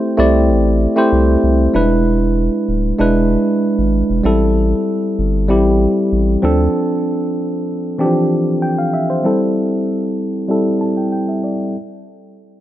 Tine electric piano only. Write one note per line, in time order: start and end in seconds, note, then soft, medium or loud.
0.00 0.17 A3 medium
0.00 0.18 C4 medium
0.00 0.18 E4 medium
0.00 0.19 G4 medium
0.00 0.13 C5 loud
0.17 0.88 A3 medium
0.17 0.89 C4 medium
0.17 0.89 E4 medium
0.17 0.89 G4 medium
0.17 0.89 D5 medium
0.96 1.66 A3 medium
0.96 1.67 C4 medium
0.96 1.67 E4 medium
0.96 1.67 G4 medium
0.96 1.68 C5 medium
1.73 1.81 G3 medium
1.73 2.87 D4 medium
1.73 2.88 E4 medium
1.73 2.88 B4 medium
1.80 2.90 G#3 medium
2.98 4.12 G#3 medium
2.98 4.12 D4 medium
2.98 4.13 E4 medium
2.98 4.13 B4 medium
4.24 5.37 G3 medium
4.24 5.37 C4 medium
4.24 5.38 E4 medium
4.24 5.38 A4 medium
5.48 6.43 G3 medium
5.48 6.42 C4 medium
5.48 6.44 E4 medium
5.48 6.44 G4 medium
6.42 7.55 F3 medium
6.42 7.56 C4 medium
6.42 7.56 D4 medium
6.42 7.57 A4 loud
7.98 8.06 E3 medium
7.98 9.12 C4 medium
7.98 9.12 D4 medium
7.98 9.13 G4 medium
8.05 9.15 F3 medium
8.62 8.78 G5 medium
8.78 8.93 F5 medium
8.94 9.09 E5 medium
9.10 9.40 C5 medium
9.23 10.37 G3 medium
9.23 10.37 C4 medium
9.23 10.38 E4 medium
9.23 10.38 A4 medium
10.48 11.62 G3 medium
10.48 11.62 C4 medium
10.48 11.63 E4 medium
10.48 11.63 A4 medium
10.81 10.96 A5 medium
10.97 11.11 G5 medium
11.12 11.27 G5 medium
11.29 11.43 E5 medium
11.44 11.73 D5 medium